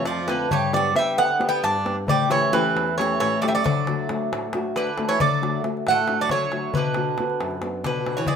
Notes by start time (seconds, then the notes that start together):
Already playing: A3 C4 F4
0.05 F2 F3 D5, darbuka tek
0.17 darbuka tek
0.27 D3 A3 C4 F4 B4, darbuka tek
0.50 G2 G3 C#5, darbuka dum
0.73 F#3 B3 D4 G4 D5, darbuka tek
0.95 G3 B3 D4 G4 E5, darbuka tek
1.07 darbuka tek
1.17 D3 B3 F#5, darbuka tek
1.30 darbuka tek
1.39 B3 D4 G4, darbuka tek
1.49 B3 G5
1.63 G2 D4 A5, darbuka tek
1.75 darbuka tek
1.85 B3 D4 G4, darbuka tek
2.07 A2 G3 D5, darbuka dum
2.28 E3 A3 C#4 G4 C#5, darbuka tek
2.52 E3 A3 C#4 G4 B4, darbuka tek
2.65 darbuka tek
2.75 E2, darbuka tek
2.87 darbuka tek
2.98 E3 A3 C#4 G4 C#5, darbuka tek
3.20 A2 E3 C#5, darbuka tek
3.33 darbuka tek
3.42 F#3 A3 C#4 G4 D5, darbuka tek
3.48 G3 E5
3.55 F#3 D5
3.64 D3 F#3 D5, darbuka dum
3.87 A3 D4 F#4, darbuka tek
4.09 A3 D4 F#4, darbuka tek
4.32 A2, darbuka tek
4.53 A3 D4 F#4, darbuka tek
4.76 D3 B4, darbuka tek
4.87 darbuka tek
4.98 A3 D4 F#4, darbuka tek
5.09 E3 C#5, darbuka tek
5.20 D3 F#3 D5, darbuka dum
5.41 A3 D4 F#4, darbuka tek
5.63 A3 D4 F#4, darbuka tek
5.77 darbuka tek
5.87 A2 A3 F#5, darbuka tek
5.97 darbuka tek
6.08 A3 D4 F#4, darbuka tek
6.21 F#3 D5
6.29 D3 F#3 C#5, darbuka tek, darbuka dum
6.41 darbuka tek
6.52 A3 D4 F#4, darbuka tek
6.74 B2 D3 B4, darbuka dum
6.94 B3 D4 F#4, darbuka tek
7.18 B3 D4 F#4, darbuka tek
7.30 darbuka tek
7.41 F#2, darbuka tek
7.51 darbuka tek
7.62 B3 D4 F#4, darbuka tek
7.84 B2 D3 B4, darbuka tek, darbuka dum
7.96 darbuka tek
8.06 B3 D4 F#4, darbuka tek
8.17 E3 C#5
8.27 E3 G#3 D5, darbuka dum